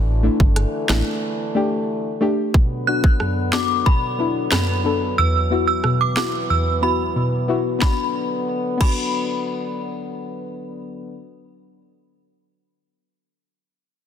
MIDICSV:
0, 0, Header, 1, 6, 480
1, 0, Start_track
1, 0, Key_signature, 2, "minor"
1, 0, Tempo, 659341
1, 1851, Time_signature, 4, 2, 24, 8
1, 10239, End_track
2, 0, Start_track
2, 0, Title_t, "Synth bell"
2, 0, Program_c, 0, 98
2, 2092, Note_on_c, 0, 90, 67
2, 2198, Note_off_c, 0, 90, 0
2, 2573, Note_on_c, 0, 86, 79
2, 2787, Note_off_c, 0, 86, 0
2, 2811, Note_on_c, 0, 83, 93
2, 3149, Note_off_c, 0, 83, 0
2, 3291, Note_on_c, 0, 83, 76
2, 3629, Note_off_c, 0, 83, 0
2, 3773, Note_on_c, 0, 88, 107
2, 3879, Note_off_c, 0, 88, 0
2, 4131, Note_on_c, 0, 88, 73
2, 4238, Note_off_c, 0, 88, 0
2, 4374, Note_on_c, 0, 86, 73
2, 4480, Note_off_c, 0, 86, 0
2, 4494, Note_on_c, 0, 86, 83
2, 4600, Note_off_c, 0, 86, 0
2, 4734, Note_on_c, 0, 88, 75
2, 4840, Note_off_c, 0, 88, 0
2, 4971, Note_on_c, 0, 83, 72
2, 5078, Note_off_c, 0, 83, 0
2, 5694, Note_on_c, 0, 83, 80
2, 5826, Note_off_c, 0, 83, 0
2, 6412, Note_on_c, 0, 83, 74
2, 7102, Note_off_c, 0, 83, 0
2, 10239, End_track
3, 0, Start_track
3, 0, Title_t, "Synth pluck"
3, 0, Program_c, 1, 84
3, 168, Note_on_c, 1, 57, 93
3, 173, Note_on_c, 1, 62, 86
3, 179, Note_on_c, 1, 64, 98
3, 265, Note_off_c, 1, 57, 0
3, 267, Note_off_c, 1, 62, 0
3, 271, Note_off_c, 1, 64, 0
3, 646, Note_on_c, 1, 57, 98
3, 651, Note_on_c, 1, 62, 85
3, 656, Note_on_c, 1, 64, 101
3, 744, Note_off_c, 1, 57, 0
3, 747, Note_off_c, 1, 62, 0
3, 749, Note_off_c, 1, 64, 0
3, 1126, Note_on_c, 1, 57, 94
3, 1133, Note_on_c, 1, 62, 91
3, 1139, Note_on_c, 1, 67, 101
3, 1224, Note_off_c, 1, 57, 0
3, 1228, Note_off_c, 1, 62, 0
3, 1231, Note_off_c, 1, 67, 0
3, 1605, Note_on_c, 1, 57, 92
3, 1611, Note_on_c, 1, 62, 86
3, 1616, Note_on_c, 1, 67, 99
3, 1704, Note_off_c, 1, 57, 0
3, 1707, Note_off_c, 1, 62, 0
3, 1709, Note_off_c, 1, 67, 0
3, 1854, Note_on_c, 1, 47, 92
3, 2089, Note_on_c, 1, 59, 73
3, 2096, Note_on_c, 1, 62, 66
3, 2101, Note_on_c, 1, 66, 79
3, 2186, Note_off_c, 1, 59, 0
3, 2189, Note_off_c, 1, 62, 0
3, 2192, Note_off_c, 1, 66, 0
3, 2209, Note_off_c, 1, 47, 0
3, 2335, Note_on_c, 1, 42, 82
3, 2567, Note_on_c, 1, 59, 76
3, 2573, Note_on_c, 1, 62, 71
3, 2579, Note_on_c, 1, 66, 79
3, 2665, Note_off_c, 1, 59, 0
3, 2668, Note_off_c, 1, 62, 0
3, 2671, Note_off_c, 1, 66, 0
3, 2690, Note_off_c, 1, 42, 0
3, 2814, Note_on_c, 1, 47, 71
3, 3047, Note_on_c, 1, 59, 73
3, 3053, Note_on_c, 1, 62, 70
3, 3059, Note_on_c, 1, 64, 84
3, 3145, Note_off_c, 1, 59, 0
3, 3148, Note_off_c, 1, 62, 0
3, 3150, Note_off_c, 1, 64, 0
3, 3169, Note_off_c, 1, 47, 0
3, 3289, Note_on_c, 1, 42, 71
3, 3525, Note_on_c, 1, 59, 74
3, 3530, Note_on_c, 1, 62, 67
3, 3536, Note_on_c, 1, 69, 81
3, 3624, Note_off_c, 1, 59, 0
3, 3626, Note_off_c, 1, 62, 0
3, 3629, Note_off_c, 1, 69, 0
3, 3647, Note_off_c, 1, 42, 0
3, 3772, Note_on_c, 1, 40, 72
3, 4008, Note_on_c, 1, 59, 73
3, 4014, Note_on_c, 1, 64, 67
3, 4020, Note_on_c, 1, 66, 81
3, 4105, Note_off_c, 1, 59, 0
3, 4108, Note_off_c, 1, 64, 0
3, 4111, Note_off_c, 1, 66, 0
3, 4128, Note_off_c, 1, 40, 0
3, 4253, Note_on_c, 1, 47, 70
3, 4485, Note_on_c, 1, 59, 71
3, 4490, Note_on_c, 1, 64, 66
3, 4497, Note_on_c, 1, 66, 82
3, 4584, Note_off_c, 1, 59, 0
3, 4586, Note_off_c, 1, 64, 0
3, 4590, Note_off_c, 1, 66, 0
3, 4609, Note_off_c, 1, 47, 0
3, 4730, Note_on_c, 1, 40, 76
3, 4964, Note_on_c, 1, 59, 78
3, 4970, Note_on_c, 1, 64, 67
3, 4977, Note_on_c, 1, 66, 83
3, 5063, Note_off_c, 1, 59, 0
3, 5066, Note_off_c, 1, 64, 0
3, 5069, Note_off_c, 1, 66, 0
3, 5088, Note_off_c, 1, 40, 0
3, 5211, Note_on_c, 1, 47, 87
3, 5446, Note_on_c, 1, 59, 90
3, 5452, Note_on_c, 1, 64, 82
3, 5458, Note_on_c, 1, 66, 94
3, 5544, Note_off_c, 1, 59, 0
3, 5547, Note_off_c, 1, 64, 0
3, 5550, Note_off_c, 1, 66, 0
3, 5568, Note_off_c, 1, 47, 0
3, 5669, Note_on_c, 1, 59, 85
3, 5693, Note_on_c, 1, 62, 77
3, 5717, Note_on_c, 1, 66, 89
3, 5813, Note_off_c, 1, 59, 0
3, 5825, Note_off_c, 1, 62, 0
3, 5838, Note_off_c, 1, 66, 0
3, 6388, Note_on_c, 1, 59, 84
3, 6413, Note_on_c, 1, 62, 77
3, 6438, Note_on_c, 1, 66, 92
3, 8662, Note_off_c, 1, 59, 0
3, 8675, Note_off_c, 1, 62, 0
3, 8687, Note_off_c, 1, 66, 0
3, 10239, End_track
4, 0, Start_track
4, 0, Title_t, "French horn section"
4, 0, Program_c, 2, 60
4, 0, Note_on_c, 2, 50, 84
4, 0, Note_on_c, 2, 52, 74
4, 0, Note_on_c, 2, 57, 86
4, 1730, Note_off_c, 2, 50, 0
4, 1730, Note_off_c, 2, 52, 0
4, 1730, Note_off_c, 2, 57, 0
4, 1854, Note_on_c, 2, 59, 84
4, 1855, Note_on_c, 2, 50, 77
4, 1856, Note_on_c, 2, 54, 72
4, 3753, Note_off_c, 2, 50, 0
4, 3753, Note_off_c, 2, 59, 0
4, 3773, Note_on_c, 2, 52, 80
4, 3774, Note_on_c, 2, 59, 84
4, 5664, Note_off_c, 2, 54, 0
4, 5672, Note_off_c, 2, 52, 0
4, 5673, Note_off_c, 2, 59, 0
4, 5690, Note_on_c, 2, 59, 82
4, 5691, Note_on_c, 2, 50, 73
4, 5691, Note_on_c, 2, 54, 69
4, 8164, Note_off_c, 2, 50, 0
4, 8164, Note_off_c, 2, 54, 0
4, 8164, Note_off_c, 2, 59, 0
4, 10239, End_track
5, 0, Start_track
5, 0, Title_t, "FM bass"
5, 0, Program_c, 3, 39
5, 0, Note_on_c, 3, 33, 102
5, 212, Note_off_c, 3, 33, 0
5, 291, Note_on_c, 3, 31, 91
5, 478, Note_off_c, 3, 31, 0
5, 652, Note_on_c, 3, 33, 94
5, 745, Note_off_c, 3, 33, 0
5, 10239, End_track
6, 0, Start_track
6, 0, Title_t, "Drums"
6, 291, Note_on_c, 9, 36, 97
6, 364, Note_off_c, 9, 36, 0
6, 409, Note_on_c, 9, 37, 67
6, 409, Note_on_c, 9, 42, 78
6, 482, Note_off_c, 9, 37, 0
6, 482, Note_off_c, 9, 42, 0
6, 651, Note_on_c, 9, 38, 113
6, 660, Note_on_c, 9, 37, 90
6, 724, Note_off_c, 9, 38, 0
6, 732, Note_off_c, 9, 37, 0
6, 1851, Note_on_c, 9, 36, 109
6, 1924, Note_off_c, 9, 36, 0
6, 2212, Note_on_c, 9, 36, 95
6, 2284, Note_off_c, 9, 36, 0
6, 2330, Note_on_c, 9, 37, 65
6, 2402, Note_off_c, 9, 37, 0
6, 2570, Note_on_c, 9, 38, 102
6, 2579, Note_on_c, 9, 37, 85
6, 2643, Note_off_c, 9, 38, 0
6, 2652, Note_off_c, 9, 37, 0
6, 2812, Note_on_c, 9, 36, 82
6, 2885, Note_off_c, 9, 36, 0
6, 3289, Note_on_c, 9, 38, 108
6, 3297, Note_on_c, 9, 37, 93
6, 3362, Note_off_c, 9, 38, 0
6, 3370, Note_off_c, 9, 37, 0
6, 4250, Note_on_c, 9, 37, 65
6, 4322, Note_off_c, 9, 37, 0
6, 4492, Note_on_c, 9, 38, 105
6, 4500, Note_on_c, 9, 37, 83
6, 4564, Note_off_c, 9, 38, 0
6, 4573, Note_off_c, 9, 37, 0
6, 5690, Note_on_c, 9, 38, 80
6, 5691, Note_on_c, 9, 36, 96
6, 5763, Note_off_c, 9, 38, 0
6, 5764, Note_off_c, 9, 36, 0
6, 6411, Note_on_c, 9, 36, 95
6, 6411, Note_on_c, 9, 49, 83
6, 6484, Note_off_c, 9, 36, 0
6, 6484, Note_off_c, 9, 49, 0
6, 10239, End_track
0, 0, End_of_file